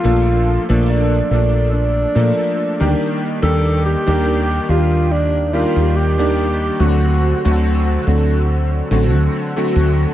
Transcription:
X:1
M:4/4
L:1/16
Q:"Swing 16ths" 1/4=71
K:Eblyd
V:1 name="Alto saxophone"
F2 z2 D4 D6 z2 | A2 G4 F2 D2 F2 G4 | ^F4 z12 |]
V:2 name="Electric grand piano"
[F,A,B,DA]3 [F,A,B,DA]3 [F,A,B,DA]4 [F,A,B,DA]3 [E,G,B,DG]3 | [E,G,B,DG]3 [E,G,B,DG]3 [E,G,B,DG]4 [E,G,B,DG]3 [E,G,B,DG]3 | [D,^F,A,C^F]3 [D,F,A,CF]3 [D,F,A,CF]4 [D,F,A,CF]3 [D,F,A,CF]3 |]
V:3 name="Fretless electric bass" clef=bass
B,,,2 z B,,,2 z B,,,3 z B,, z2 D,, z2 | E,,2 z E,,2 z E,,4 z E,,4 z | D,,2 z D,,2 z D,,3 z A,,, D,, z2 D,, z |]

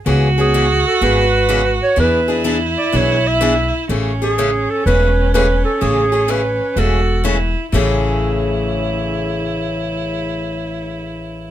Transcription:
X:1
M:4/4
L:1/8
Q:"Swing" 1/4=125
K:A
V:1 name="Clarinet"
z G2 A B3 c | B2 z d c e2 z | z G2 A B2 B A | G2 B2 A2 z2 |
z8 | z8 |]
V:2 name="Violin"
F8 | E8 | C8- | C4 F2 E2 |
E8- | E8 |]
V:3 name="Steel-string acoustic guitar"
[C,E,B,CG] [B,CG] [C,E,B,CG] z [C,E,B,CG] z [C,E,B,CG] z | [E,B,DG] [B,DG] [E,B,DG] z [E,B,DG] z [E,B,DG] z | [C,E,A,CG] [A,CG] [C,E,A,CG] z [C,E,A,CG] z [C,E,A,CG] z | [C,E,A,CG] [A,CG] [C,E,A,CG] z [C,E,A,CG] z [C,E,A,CG] z |
[A,,C,E,A,CG]8- | [A,,C,E,A,CG]8 |]
V:4 name="Upright bass" clef=bass
C,,4 G,,,4 | E,,4 B,,,4 | A,,,4 E,,,4 | A,,,4 E,,,4 |
A,,,8- | A,,,8 |]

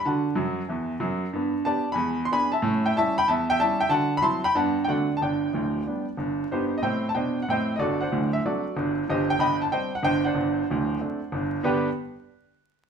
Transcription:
X:1
M:4/4
L:1/16
Q:"Swing" 1/4=186
K:G
V:1 name="Grand piano"
[fa]12 z4 | z4 [da]3 [_ab]4 c' [^gb]2 [e=a]2- | [ea]2 [eg]2 [ea]2 [gb]2 [ea]2 [eg]2 [ea]2 [eg]2 | [fa]3 b [ac']2 [gb]2 [fa]3 g [df]3 a |
[dg]12 z4 | [_EGc]3 _e [ceg]3 a [ceg]3 f [ceg]3 e | [FAd]2 [cdf]4 e2 [FAd]6 z2 | [Gc_e]2 g2 [egb]2 a2 [ceg]2 f2 [ceg]2 [cdf]2- |
[cdf]12- [cdf]2 z2 | [G,,D,B,DGBg]2 z12 z2 |]
V:2 name="Grand piano" clef=bass
[D,F]4 [F,,F,]4 [E,,E,]4 [F,,F,]4 | [G,,B,]4 [B,DG]4 [E,,^G,]4 [B,D^G]4 | [A,,^C]4 [G,CE]4 E,,4 [G,CE]4 | [D,F]4 [F,CE]4 [G,,G,B,D]4 [D,A,CDF]4 |
[G,,,G,,]4 [D,,,D,,]4 [G,B,D]4 [G,,,G,,]4 | [G,,B,]4 [A,,C]4 [B,,D]4 [A,,C]4 | [G,,,G,,]4 [D,,,D,,]4 [F,CD]4 [G,,,G,,]4 | [G,,,G,,]4 [G,,,G,,]4 [G,C]4 [G,,,G,,]4 |
[G,,,G,,]4 [D,,,D,,]4 [A,CD]4 [G,,,G,,]4 | z16 |]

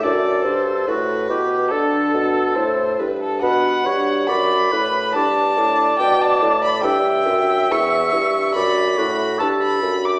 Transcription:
X:1
M:4/4
L:1/16
Q:1/4=71
K:Dmix
V:1 name="Violin"
d2 c2 B4 A4 c2 B A | [K:D] f4 b4 a4 g a2 b | g4 c'4 b4 a b2 d' |]
V:2 name="Oboe"
A4 F2 G2 A6 z2 | [K:D] B2 c2 d2 B2 d8 | e8 d2 F2 A2 z2 |]
V:3 name="Lute"
[A,DA]16 | [K:D] [B,DF]8 [B,DG]8 | [A,CA]8 [A,DA]8 |]
V:4 name="Lute" clef=bass
F,,2 G,,2 A,,2 B,,2 D,2 B,,2 A,,2 G,,2 | [K:D] B,,2 G,,2 F,,2 A,,2 G,,2 A,,2 B,,2 A,,2 | G,,2 F,,2 E,,2 G,,2 F,,2 A,,2 G,,2 F,,2 |]
V:5 name="Bassoon" clef=bass
F,,2 G,,2 A,,2 B,,2 D,2 B,,2 A,,2 G,,2 | [K:D] B,,2 G,,2 F,,2 A,,2 G,,2 A,,2 B,,2 A,,2 | G,,2 F,,2 E,,2 G,,2 F,,2 A,,2 G,,2 F,,2 |]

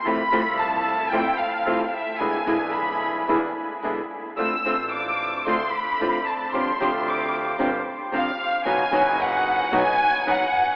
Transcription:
X:1
M:4/4
L:1/16
Q:1/4=112
K:Ephr
V:1 name="Violin section"
b4 a4 g2 f3- f/2 f/2 e2 | ^g4 b4 z8 | e'4 d'4 c'2 b4 a2 | c'4 d'4 z4 f4 |
^g4 ^f4 g4 f4 |]
V:2 name="Bandoneon"
[EFA]2 [EFA]6 [EFA]2 z2 [EFA]2 z2 | [DE^G]2 [DEG]6 [DEG]2 z2 [DEG]2 z2 | [DFc]2 [DFc]6 [DFc]2 z2 [DFc]2 z2 | [FGc]2 [FGc]6 [FGc]2 z2 [FGc]2 z2 |
[^D^FB]2 [DFB]6 [DFB]2 z2 [DFB]2 z2 |]
V:3 name="Nylon-string guitar"
[C,E,A,CF]2 [C,E,A,CF]2 z4 [C,E,A,CF]2 z2 [C,E,A,CF]2 z2 | [B,,D,^G,B,E]2 [B,,D,G,B,E]2 z4 [B,,D,G,B,E]2 z2 [B,,D,G,B,E]2 z2 | [D,A,CF]2 [D,A,CF]2 z4 [D,A,CF]2 z2 [D,A,CF]2 z2 | [C,F,CDG]2 [C,F,CDG]2 z4 [C,F,CDG]2 z2 [C,F,CDG]2 z2 |
[B,,^F,B,^D^F]2 [B,,F,B,DF]2 z4 [B,,F,B,DF]2 z2 [B,,F,B,DF]2 z2 |]
V:4 name="Double bass" clef=bass
F,,2 C,,6 F,,2 z2 C,,2 z2 | E,,2 B,,,6 E,,2 z2 B,,,2 z2 | D,,2 A,,,6 D,,2 z2 A,,,2 z2 | G,,,2 D,,6 G,,,2 z2 D,,2 z2 |
B,,,2 ^F,,,6 B,,,2 z2 F,,,2 z2 |]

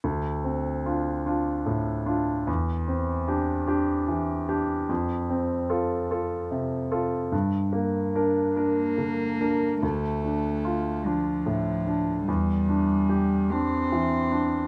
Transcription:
X:1
M:6/8
L:1/8
Q:3/8=49
K:Dm
V:1 name="Grand piano"
D,, C [DF] [DF] A,, [DF] | E,, C [DG] [DG] E, [DG] | F,, C [FA] [FA] C, [FA] | G,, B, [DB] [DB] D, [DB] |
D,, D F D A,, D | E,, D G D E, D |]
V:2 name="Cello"
z6 | z6 | z6 | z3 B,3 |
A,3 F,3 | G,3 C3 |]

